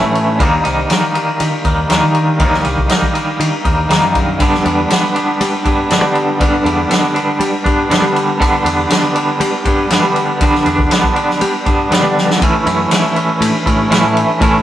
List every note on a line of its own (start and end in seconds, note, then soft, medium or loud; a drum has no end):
0.00 0.38 A2 medium
0.00 0.41 A2 medium
0.00 0.39 E3 medium
0.00 0.39 A3 medium
0.00 0.39 C#4 loud
0.00 0.40 E4 medium
0.15 ride medium
0.39 0.59 D#2 loud
0.39 0.89 D#3 medium
0.39 0.66 G3 medium
0.39 0.65 A#3 loud
0.39 0.63 D#4 loud
0.39 kick loud
0.39 ride medium
0.64 0.85 C2 medium
0.64 0.90 G3 medium
0.64 0.91 A#3 medium
0.64 0.92 D#4 medium
0.64 ride medium
0.90 1.89 D#3 medium
0.90 1.16 G3 medium
0.90 1.15 A#3 medium
0.90 1.14 D#4 medium
0.90 snare loud
0.90 ride loud
1.14 1.67 G3 medium
1.14 1.65 A#3 medium
1.14 1.64 D#4 medium
1.14 ride medium
1.40 1.50 D#3 medium
1.40 ride medium
1.65 1.84 D#2 medium
1.65 1.90 G3 medium
1.65 1.90 A#3 medium
1.65 1.91 D#4 medium
1.65 kick medium
1.65 ride medium
1.89 2.00 D#2 medium
1.89 2.38 D#3 medium
1.89 2.40 G3 loud
1.89 2.40 A#3 medium
1.89 2.41 D#4 loud
1.89 snare loud
1.89 ride medium
2.03 2.41 D#3 medium
2.15 ride medium
2.39 2.59 D#2 loud
2.39 2.87 D#3 medium
2.39 2.66 G3 loud
2.39 2.64 A#3 medium
2.39 2.62 D#4 loud
2.39 kick loud
2.39 ride medium
2.53 snare soft
2.64 2.85 C2 medium
2.64 2.89 G3 medium
2.64 2.89 A#3 medium
2.64 2.90 D#4 medium
2.64 ride medium
2.77 kick medium
2.88 3.40 D#3 medium
2.88 3.16 G3 medium
2.88 3.14 A#3 medium
2.88 3.12 D#4 medium
2.88 snare loud
2.88 ride medium
3.02 kick medium
3.14 3.67 G3 medium
3.14 3.65 A#3 medium
3.14 3.63 D#4 medium
3.14 ride medium
3.40 3.50 D#3 medium
3.40 ride medium
3.65 3.85 D#2 medium
3.65 3.90 G3 soft
3.65 3.90 A#3 medium
3.65 3.91 D#4 medium
3.65 kick medium
3.65 ride medium
3.89 3.99 D#2 medium
3.89 4.38 D#3 medium
3.89 4.40 G3 loud
3.89 4.39 A#3 loud
3.89 4.40 D#4 loud
3.89 snare loud
3.89 ride medium
4.02 4.40 F#2 medium
4.15 kick medium
4.15 ride medium
4.39 5.90 G2 medium
4.39 4.59 G2 loud
4.39 4.89 D3 medium
4.39 4.67 G3 medium
4.39 4.66 B3 medium
4.39 4.64 D4 medium
4.39 kick medium
4.39 ride medium
4.54 snare soft
4.65 4.85 E2 medium
4.65 4.90 G3 medium
4.65 4.91 B3 medium
4.65 4.92 D4 medium
4.65 ride medium
4.90 5.40 D3 medium
4.90 5.17 G3 medium
4.90 5.16 B3 medium
4.90 5.14 D4 medium
4.90 snare loud
4.90 ride loud
5.15 5.67 G3 medium
5.15 5.66 B3 medium
5.15 5.64 D4 medium
5.15 ride medium
5.41 5.50 G3 medium
5.41 ride loud
5.65 5.85 G2 medium
5.65 5.91 G3 medium
5.65 5.92 B3 medium
5.65 5.92 D4 medium
5.65 kick medium
5.65 ride medium
5.90 6.39 G2 medium
5.90 6.01 G2 medium
5.90 6.39 D3 medium
5.90 6.41 G3 medium
5.90 6.41 B3 loud
5.90 6.42 D4 loud
5.90 snare loud
5.90 ride medium
6.03 6.40 G3 medium
6.15 ride medium
6.39 7.89 G2 loud
6.39 6.60 G2 loud
6.39 6.88 D3 medium
6.39 6.67 G3 loud
6.39 6.65 B3 loud
6.39 6.64 D4 medium
6.39 kick loud
6.39 ride medium
6.64 6.84 E2 medium
6.64 6.90 G3 medium
6.64 6.91 B3 medium
6.64 6.92 D4 medium
6.64 ride medium
6.90 7.40 D3 medium
6.90 7.17 G3 medium
6.90 7.16 B3 medium
6.90 7.14 D4 medium
6.90 snare loud
6.90 ride medium
7.14 7.67 G3 medium
7.14 7.65 B3 medium
7.14 7.64 D4 medium
7.14 ride medium
7.40 7.50 G3 medium
7.40 ride medium
7.64 7.85 G2 medium
7.64 7.91 G3 soft
7.64 7.91 B3 medium
7.64 7.92 D4 medium
7.64 kick medium
7.64 ride medium
7.90 8.39 G2 medium
7.90 8.00 G2 medium
7.90 8.39 D3 medium
7.90 8.40 G3 medium
7.90 8.41 B3 medium
7.90 8.41 D4 loud
7.90 snare loud
7.90 ride medium
8.02 8.41 G3 medium
8.16 ride medium
8.39 9.90 G2 medium
8.39 8.60 G2 loud
8.39 8.88 D3 loud
8.39 8.67 G3 medium
8.39 8.66 B3 loud
8.39 8.64 D4 loud
8.39 kick loud
8.39 ride medium
8.64 8.85 E2 medium
8.64 8.90 G3 medium
8.64 8.91 B3 medium
8.64 8.92 D4 medium
8.64 ride medium
8.90 9.40 D3 medium
8.90 9.17 G3 medium
8.90 9.16 B3 medium
8.90 9.14 D4 medium
8.90 snare loud
8.90 ride loud
9.15 9.67 G3 medium
9.15 9.66 B3 medium
9.15 9.64 D4 medium
9.15 ride medium
9.40 9.50 G3 loud
9.40 ride loud
9.65 9.85 G2 medium
9.65 9.91 G3 medium
9.65 9.91 B3 medium
9.65 9.92 D4 medium
9.65 kick medium
9.65 ride medium
9.90 10.00 G2 medium
9.90 10.40 G2 medium
9.90 10.41 D3 medium
9.90 10.41 G3 medium
9.90 10.42 B3 loud
9.90 10.42 D4 medium
9.90 snare loud
9.90 ride loud
10.03 10.41 G3 medium
10.16 ride medium
10.41 10.60 G2 loud
10.41 10.91 G2 medium
10.41 10.89 D3 medium
10.41 10.67 G3 loud
10.41 10.66 B3 loud
10.41 10.64 D4 loud
10.41 kick loud
10.41 ride medium
10.55 snare soft
10.65 10.86 E2 medium
10.65 10.90 G3 medium
10.65 10.91 B3 medium
10.65 10.92 D4 medium
10.65 ride medium
10.79 kick medium
10.90 11.41 D3 medium
10.90 11.18 G3 medium
10.90 11.16 B3 medium
10.90 11.15 D4 medium
10.90 snare loud
10.90 ride loud
11.04 kick medium
11.16 11.68 G3 medium
11.16 11.66 B3 medium
11.16 11.65 D4 medium
11.16 ride medium
11.30 snare soft
11.41 11.51 G3 medium
11.41 ride medium
11.66 11.85 G2 medium
11.66 11.91 G3 medium
11.66 11.92 B3 medium
11.66 11.92 D4 medium
11.66 kick medium
11.66 ride medium
11.91 12.39 G2 medium
11.91 12.01 G2 medium
11.91 12.40 D3 medium
11.91 12.40 G3 loud
11.91 12.40 B3 loud
11.91 12.41 D4 medium
11.91 snare loud
11.91 ride medium
12.04 12.42 G3 medium
12.18 snare medium
12.31 snare medium
12.41 13.90 A2 medium
12.41 12.61 A2 medium
12.41 12.91 E3 medium
12.41 12.68 A3 medium
12.41 12.67 C#4 medium
12.41 12.66 E4 loud
12.41 kick loud
12.41 ride medium
12.66 12.86 F#2 medium
12.66 12.92 A3 medium
12.66 12.92 C#4 medium
12.66 12.94 E4 medium
12.66 ride medium
12.91 13.90 E3 medium
12.91 13.18 A3 medium
12.91 13.17 C#4 medium
12.91 13.15 E4 medium
12.91 snare loud
12.91 ride loud
13.16 13.67 A3 soft
13.16 13.66 C#4 medium
13.16 13.65 E4 medium
13.16 ride medium
13.41 13.51 A2 medium
13.41 ride loud
13.66 13.86 A2 medium
13.66 13.90 A3 medium
13.66 13.91 C#4 medium
13.66 13.91 E4 medium
13.66 kick medium
13.66 ride medium
13.90 14.39 A2 loud
13.90 14.01 A2 medium
13.90 14.40 E3 medium
13.90 14.41 A3 loud
13.90 14.41 C#4 loud
13.90 14.42 E4 loud
13.90 snare loud
13.90 ride loud
14.04 14.23 A2 medium
14.17 ride medium
14.40 14.62 A2 medium
14.40 14.61 A2 loud
14.40 14.62 E3 medium
14.40 14.62 A3 loud
14.40 14.62 C#4 medium
14.40 14.62 E4 loud
14.40 kick loud
14.40 ride medium